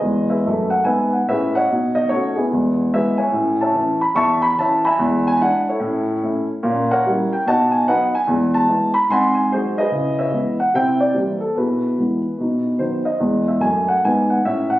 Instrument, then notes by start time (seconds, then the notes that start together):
grand piano
Already playing: G#4 B4 D#5
0.01 E2 G#3
0.30 G#4 B4 E5
0.46 F#2 A3
0.70 F#5
0.84 G#2 B3 B4 E5 G#5
1.13 F#5
1.27 A2 C#4 G#4 B4 E5
1.55 C#5 D#5 F#5
1.70 B2 D#4
1.95 D#5
2.09 A3 C#4 D#4 F#4 A4 C#5
2.36 B3 E4 G#4
2.52 E2 G#3
2.93 G#3 B3 E4 G#4 B4 E5
3.18 C#5 E5 G#5
3.32 A2 C#4
3.61 C#5 E5 A5
3.73 E3 C#4 E4
4.01 B5
4.15 E2 E5 A5 C#6
4.42 B5
4.58 E3 C#4 E4 C#5 E5 A5
4.85 E5 G#5 B5
4.99 E2 G#3
5.27 G#5
5.41 G#3 D4 E4 F#5
5.69 E4 A4 C#5
5.79 A2 C#4
6.23 A3 C#4 E4
6.63 A#2 C#4
6.91 A#4 C#5 F#5
7.06 G3 C#4 E4
7.33 G5
7.46 B2 D#4 D#5 F#5 A5
7.71 G#5
7.87 F#3 B3 D#4 B4 D#5 F#5
8.15 G#5
8.27 E2 G#3
8.54 A5
8.67 G#3 B3 E4
8.94 B5
9.09 G#2 C4 F#5 G#5 C6
9.35 G#5
9.52 F#3 G#3 D#4 F#4 G#4 C5
9.78 G#4 B4 D#5
9.91 C#3 E4
10.19 B4 C#5 E5
10.31 E3 G#3 B3
10.60 F#5
10.74 C3 E4 C5 E5 G5
11.00 D5
11.13 E3 G3 A#3 E4 G4 C5
11.40 A4
11.55 B2 E4 G#4 B4
11.98 E3 G#3 B3
12.38 B2 D#4
12.78 D#3 F#3 B3 C5
13.05 D#5
13.20 E2 G#3
13.48 E5
13.60 F#2 A3 G#5
13.88 F#5
14.04 G#2 B3 G#5
14.30 F#5
14.44 A2 C#4 E5
14.70 F#5